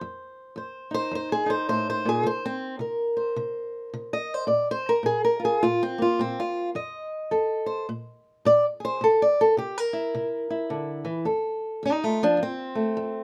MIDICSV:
0, 0, Header, 1, 2, 480
1, 0, Start_track
1, 0, Tempo, 563910
1, 1909, Time_signature, 4, 2, 24, 8
1, 11266, End_track
2, 0, Start_track
2, 0, Title_t, "Steel-string acoustic guitar"
2, 0, Program_c, 0, 25
2, 0, Note_on_c, 0, 72, 51
2, 11, Note_on_c, 0, 41, 70
2, 442, Note_off_c, 0, 41, 0
2, 474, Note_on_c, 0, 41, 67
2, 486, Note_off_c, 0, 72, 0
2, 490, Note_on_c, 0, 72, 44
2, 773, Note_on_c, 0, 63, 44
2, 800, Note_off_c, 0, 72, 0
2, 804, Note_on_c, 0, 72, 107
2, 915, Note_off_c, 0, 41, 0
2, 949, Note_on_c, 0, 41, 73
2, 956, Note_off_c, 0, 72, 0
2, 981, Note_on_c, 0, 72, 89
2, 1125, Note_off_c, 0, 72, 0
2, 1125, Note_on_c, 0, 68, 98
2, 1233, Note_off_c, 0, 63, 0
2, 1243, Note_on_c, 0, 63, 45
2, 1276, Note_on_c, 0, 72, 87
2, 1277, Note_off_c, 0, 68, 0
2, 1392, Note_off_c, 0, 41, 0
2, 1430, Note_off_c, 0, 72, 0
2, 1434, Note_on_c, 0, 45, 61
2, 1440, Note_on_c, 0, 72, 89
2, 1595, Note_off_c, 0, 72, 0
2, 1614, Note_on_c, 0, 72, 81
2, 1727, Note_off_c, 0, 45, 0
2, 1748, Note_on_c, 0, 46, 63
2, 1762, Note_off_c, 0, 72, 0
2, 1777, Note_on_c, 0, 68, 97
2, 1887, Note_off_c, 0, 63, 0
2, 1900, Note_on_c, 0, 48, 69
2, 1921, Note_off_c, 0, 46, 0
2, 1923, Note_off_c, 0, 68, 0
2, 1928, Note_on_c, 0, 72, 95
2, 2079, Note_off_c, 0, 72, 0
2, 2090, Note_on_c, 0, 60, 85
2, 2338, Note_off_c, 0, 60, 0
2, 2348, Note_off_c, 0, 48, 0
2, 2376, Note_on_c, 0, 48, 70
2, 2388, Note_on_c, 0, 70, 47
2, 2695, Note_on_c, 0, 72, 46
2, 2826, Note_off_c, 0, 48, 0
2, 2863, Note_on_c, 0, 48, 71
2, 3310, Note_off_c, 0, 48, 0
2, 3350, Note_on_c, 0, 48, 79
2, 3513, Note_off_c, 0, 72, 0
2, 3517, Note_on_c, 0, 75, 93
2, 3695, Note_off_c, 0, 75, 0
2, 3695, Note_on_c, 0, 72, 92
2, 3793, Note_off_c, 0, 48, 0
2, 3804, Note_on_c, 0, 46, 72
2, 3807, Note_off_c, 0, 72, 0
2, 3808, Note_off_c, 0, 70, 0
2, 3810, Note_on_c, 0, 74, 52
2, 3980, Note_off_c, 0, 74, 0
2, 4010, Note_on_c, 0, 72, 87
2, 4160, Note_off_c, 0, 72, 0
2, 4162, Note_on_c, 0, 70, 93
2, 4260, Note_off_c, 0, 46, 0
2, 4281, Note_on_c, 0, 46, 69
2, 4302, Note_off_c, 0, 70, 0
2, 4306, Note_on_c, 0, 68, 92
2, 4461, Note_off_c, 0, 68, 0
2, 4465, Note_on_c, 0, 70, 86
2, 4592, Note_on_c, 0, 65, 47
2, 4628, Note_off_c, 0, 70, 0
2, 4637, Note_on_c, 0, 68, 92
2, 4739, Note_off_c, 0, 46, 0
2, 4779, Note_off_c, 0, 65, 0
2, 4789, Note_on_c, 0, 65, 107
2, 4794, Note_off_c, 0, 68, 0
2, 4800, Note_on_c, 0, 46, 68
2, 4950, Note_off_c, 0, 65, 0
2, 4960, Note_on_c, 0, 60, 94
2, 5092, Note_on_c, 0, 58, 47
2, 5116, Note_off_c, 0, 60, 0
2, 5124, Note_on_c, 0, 65, 86
2, 5238, Note_off_c, 0, 46, 0
2, 5270, Note_on_c, 0, 46, 79
2, 5277, Note_off_c, 0, 65, 0
2, 5283, Note_on_c, 0, 60, 91
2, 5437, Note_off_c, 0, 60, 0
2, 5444, Note_on_c, 0, 65, 89
2, 5696, Note_off_c, 0, 65, 0
2, 5714, Note_off_c, 0, 46, 0
2, 5732, Note_off_c, 0, 58, 0
2, 5746, Note_on_c, 0, 41, 71
2, 5751, Note_on_c, 0, 75, 68
2, 6191, Note_off_c, 0, 41, 0
2, 6224, Note_on_c, 0, 69, 60
2, 6228, Note_on_c, 0, 41, 67
2, 6520, Note_off_c, 0, 75, 0
2, 6523, Note_on_c, 0, 72, 59
2, 6672, Note_off_c, 0, 41, 0
2, 6685, Note_off_c, 0, 69, 0
2, 6687, Note_off_c, 0, 72, 0
2, 6714, Note_on_c, 0, 46, 75
2, 7155, Note_off_c, 0, 46, 0
2, 7195, Note_on_c, 0, 46, 84
2, 7204, Note_on_c, 0, 74, 114
2, 7357, Note_off_c, 0, 74, 0
2, 7491, Note_on_c, 0, 68, 54
2, 7530, Note_on_c, 0, 72, 106
2, 7636, Note_off_c, 0, 46, 0
2, 7651, Note_off_c, 0, 68, 0
2, 7668, Note_on_c, 0, 48, 77
2, 7680, Note_off_c, 0, 72, 0
2, 7692, Note_on_c, 0, 69, 98
2, 7841, Note_off_c, 0, 69, 0
2, 7849, Note_on_c, 0, 74, 92
2, 8000, Note_off_c, 0, 74, 0
2, 8009, Note_on_c, 0, 69, 100
2, 8112, Note_off_c, 0, 48, 0
2, 8147, Note_on_c, 0, 48, 78
2, 8154, Note_off_c, 0, 69, 0
2, 8158, Note_on_c, 0, 67, 86
2, 8321, Note_off_c, 0, 67, 0
2, 8321, Note_on_c, 0, 70, 106
2, 8453, Note_on_c, 0, 64, 51
2, 8592, Note_off_c, 0, 48, 0
2, 8636, Note_on_c, 0, 48, 79
2, 8929, Note_off_c, 0, 64, 0
2, 8941, Note_on_c, 0, 64, 47
2, 9076, Note_off_c, 0, 48, 0
2, 9108, Note_on_c, 0, 50, 67
2, 9276, Note_off_c, 0, 70, 0
2, 9402, Note_on_c, 0, 52, 65
2, 9404, Note_off_c, 0, 50, 0
2, 9576, Note_off_c, 0, 64, 0
2, 9578, Note_on_c, 0, 41, 73
2, 9582, Note_on_c, 0, 69, 47
2, 9589, Note_off_c, 0, 52, 0
2, 10027, Note_off_c, 0, 41, 0
2, 10067, Note_on_c, 0, 41, 70
2, 10091, Note_on_c, 0, 63, 76
2, 10097, Note_off_c, 0, 69, 0
2, 10097, Note_on_c, 0, 67, 91
2, 10241, Note_off_c, 0, 63, 0
2, 10246, Note_on_c, 0, 57, 75
2, 10250, Note_off_c, 0, 67, 0
2, 10250, Note_on_c, 0, 65, 83
2, 10399, Note_off_c, 0, 57, 0
2, 10399, Note_off_c, 0, 65, 0
2, 10410, Note_on_c, 0, 53, 82
2, 10413, Note_on_c, 0, 62, 90
2, 10512, Note_off_c, 0, 41, 0
2, 10530, Note_on_c, 0, 41, 71
2, 10561, Note_off_c, 0, 53, 0
2, 10562, Note_off_c, 0, 62, 0
2, 10577, Note_on_c, 0, 60, 94
2, 10856, Note_on_c, 0, 57, 47
2, 10984, Note_off_c, 0, 41, 0
2, 11037, Note_on_c, 0, 41, 75
2, 11266, Note_off_c, 0, 41, 0
2, 11266, Note_off_c, 0, 57, 0
2, 11266, Note_off_c, 0, 60, 0
2, 11266, End_track
0, 0, End_of_file